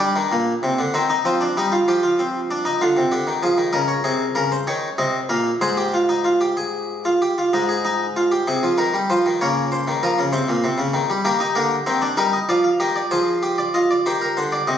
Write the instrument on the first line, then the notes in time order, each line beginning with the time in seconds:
harpsichord
0.00 G3 D4
0.16 D#3
0.32 A#2
0.63 C3
0.79 D3
0.94 D#3 C4
1.10 D#4
1.25 F3 C4
1.41 D4
1.57 G3 D#4
1.72 F4
1.88 F3 G4
2.03 F4
2.19 C4
2.51 D4
2.65 D#4
2.81 D3 F4
2.97 C3
3.12 D3 G4
3.27 D#3
3.43 F3 G#4
3.58 D#3
3.73 C#3 A#4 D#5
3.88 C#5
4.04 C3 G#4
4.35 C#3 A#4
4.52 C5
4.67 D#3 C#5
4.98 C3 D#5
5.29 A#2 F5
5.61 G#2 G#4 C5
5.77 G4
5.94 F4
6.09 D#4
6.25 F4
6.41 G4
6.57 G#4
7.05 F4
7.22 G4
7.38 F4
7.53 G#2 D#4
7.69 G#4
7.85 D#4
8.16 F4
8.32 G4
8.47 C3 G#4
8.63 F3
8.78 D#3 A#4
8.94 G3
9.10 F3 C5
9.26 D#3
9.41 C#3 A#3 C#5
9.72 C5
9.88 D#3
10.03 F3 A#4
10.19 C#3
10.33 C3 C5
10.49 A#2
10.64 C3
10.78 C#3
10.94 D#3
11.10 G3
11.25 D#3 A#3 G4
11.40 D#4
11.55 D3 A#3
11.86 D#3 C4
12.02 D4
12.17 G3 D#4 A#4
12.33 D#5
12.49 F3 F4 D5
12.64 F5
12.80 D#3 G4 D#5
12.96 D5
13.11 F3 G#4 C5
13.43 G4
13.58 D5
13.74 F4 D#5
13.91 D5
14.06 D#3 G4 C5
14.21 A#4
14.37 D3 C5
14.52 D5
14.67 C3 D#5